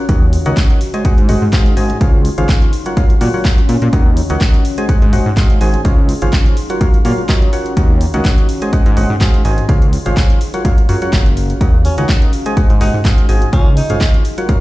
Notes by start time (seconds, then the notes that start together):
Already playing: C#4 F#4 F5 A#5
0.09 D#2 D#3 F#4 A#4 C#5 D#5 F#5, kick, closed hi-hat
0.33 open hi-hat
0.46 C#2 D#3 F#4 A#4 C#5 D#5 F#5, closed hi-hat
0.57 kick, clap, closed hi-hat
0.70 closed hi-hat
0.81 D#4, open hi-hat
0.88 G#4
0.94 G#3 F#4 G#4 C5 D#5 G#5, closed hi-hat
1.05 G#3 F#4 G#4 C5 D#5 F#5, kick, closed hi-hat
1.17 G#2 C6, closed hi-hat
1.29 F#1 G#3 F#4 G#4 C5 D#5 F#5, open hi-hat
1.42 G#2
1.53 G#3 F#4 G#4 C5 D#5 F5, kick, clap, closed hi-hat
1.66 closed hi-hat
1.77 G#1 F#4 G#4 C5 D#5 G#5, open hi-hat
1.90 closed hi-hat
2.01 C#2 C#3 C#4 F4 G#4 C5 C#5 F5, kick, closed hi-hat
2.10 F5
2.25 open hi-hat
2.38 G#1 C#3 F4 G#4 C5 C#5 F5, closed hi-hat
2.49 kick, clap, closed hi-hat
2.62 closed hi-hat
2.73 open hi-hat
2.84 F#3 F4 F#4 A#4 C#5 F#5, closed hi-hat
2.97 F#2 F#3 F4 F#4 A#4 C#5 F5, kick, closed hi-hat
3.10 closed hi-hat
3.21 A#2 F#3 F4 F#4 A#4 C#5 F#5, open hi-hat
3.27 A#5
3.34 F#3 F4 F#4 A#4 C#5 F#5
3.45 kick, clap, closed hi-hat
3.58 closed hi-hat
3.69 A#2, open hi-hat
3.82 A#2, closed hi-hat
3.93 D#2 D#3 F#4 A#4 C#5 D#5 F#5, kick, closed hi-hat
4.17 open hi-hat
4.30 C#2 D#3 F#4 A#4 C#5 D#5 F#5, closed hi-hat
4.41 kick, clap, closed hi-hat
4.54 closed hi-hat
4.65 D#4, open hi-hat
4.78 G#3 F#4 G#4 C5 D#5 G#5, closed hi-hat
4.89 G#3 F#4 G#4 C5 D#5 F#5, kick, closed hi-hat
5.02 G#2 C6, closed hi-hat
5.13 F#1 G#3 F#4 G#4 C5 D#5 F#5, open hi-hat
5.26 G#2
5.37 G#3 F#4 G#4 C5 D#5 F5, kick, clap, closed hi-hat
5.50 closed hi-hat
5.61 G#1 F#4 G#4 C5 D#5 G#5, open hi-hat
5.74 closed hi-hat
5.85 C#2 C#3 C#4 F4 G#4 C5 C#5 F5, kick, closed hi-hat
5.98 F5
6.09 open hi-hat
6.22 G#1 C#3 F4 G#4 C5 C#5 F5, closed hi-hat
6.33 kick, clap, closed hi-hat
6.46 closed hi-hat
6.57 open hi-hat
6.68 F#3 F4 F#4 A#4 C#5 F#5, closed hi-hat
6.81 F#2 F#3 F4 F#4 A#4 C#5 F5, kick, closed hi-hat
6.94 closed hi-hat
7.05 A#2 F#3 F4 F#4 A#4 C#5 F5, open hi-hat
7.11 A#5
7.29 F#3 F4 F#4 A#4 C#5 D#5, kick, clap, closed hi-hat
7.42 closed hi-hat
7.53 F4 F#4 A#4 C#5 F#5, open hi-hat
7.66 closed hi-hat
7.77 D#2 D#3 F#4 A#4 C#5 D#5 F#5, kick, closed hi-hat
8.01 open hi-hat
8.14 C#2 D#3 F#4 A#4 C#5 D#5 F#5, closed hi-hat
8.25 kick, clap, closed hi-hat
8.38 closed hi-hat
8.49 D#4, open hi-hat
8.54 G#4
8.62 G#3 F#4 G#4 C5 D#5 G#5, closed hi-hat
8.73 G#3 F#4 G#4 C5 D#5 F#5, kick, closed hi-hat
8.86 G#2, closed hi-hat
8.97 F#1 G#3 F#4 G#4 C5 D#5 F#5 C6, open hi-hat
9.10 G#2
9.21 G#3 F#4 G#4 C5 D#5 F5, kick, clap, closed hi-hat
9.34 closed hi-hat
9.45 G#1 F#4 G#4 C5 D#5 G#5, open hi-hat
9.58 closed hi-hat
9.69 C#2 C#3 C#4 F4 G#4 C5 C#5 F5, kick, closed hi-hat
9.82 closed hi-hat
9.93 open hi-hat
10.02 F5
10.06 G#1 C#3 F4 G#4 C5 C#5 F5, closed hi-hat
10.17 kick, clap, closed hi-hat
10.30 closed hi-hat
10.41 open hi-hat
10.54 F#3 F4 F#4 A#4 C#5 F#5 A#5, closed hi-hat
10.65 F#2 F#3 F4 F#4 A#4 C#5 F5, kick, closed hi-hat
10.78 closed hi-hat
10.89 F#2 F#3 F4 F#4 A#4 C#5 F#5, open hi-hat
11.02 F#3 F4 F#4 A#4 C#5 F#5, closed hi-hat
11.13 F#1, kick, clap, closed hi-hat
11.26 closed hi-hat
11.37 open hi-hat
11.50 closed hi-hat
11.61 D#2 D#3 F#4 A#4 C#5 D#5 F#5, kick, closed hi-hat
11.85 C#4, open hi-hat
11.98 C#2 D#3 C#4 F#4 A#4 C#5 D#5 F#5, closed hi-hat
12.09 kick, clap, closed hi-hat
12.22 closed hi-hat
12.33 D#4, open hi-hat
12.46 G#3 F#4 G#4 C5 D#5 G#5, closed hi-hat
12.57 G#3 F#4 G#4 C5 D#5 F#5, kick, closed hi-hat
12.70 G#2, closed hi-hat
12.81 F#1 G#3 D#4 F#4 G#4 C5 D#5 F#5, open hi-hat
12.87 C6
12.94 G#2
13.05 G#3 F#4 G#4 C5 D#5 F5, kick, clap, closed hi-hat
13.18 closed hi-hat
13.29 G#1 F#4 G#4 C5 D#5 G#5, open hi-hat
13.42 closed hi-hat
13.53 C#2 C#3 C#4 F4 G#4 C5 C#5 F5, kick, closed hi-hat
13.77 D#4, open hi-hat
13.86 G#1 C#3 F4 G#4 C5 C#5 F5, closed hi-hat
14.01 kick, clap, closed hi-hat
14.14 closed hi-hat
14.25 open hi-hat
14.38 F#3 F4 F#4 A#4 C#5 F#5, closed hi-hat
14.49 F#2 F#3 F4 F#4 A#4 C#5 F5, kick, closed hi-hat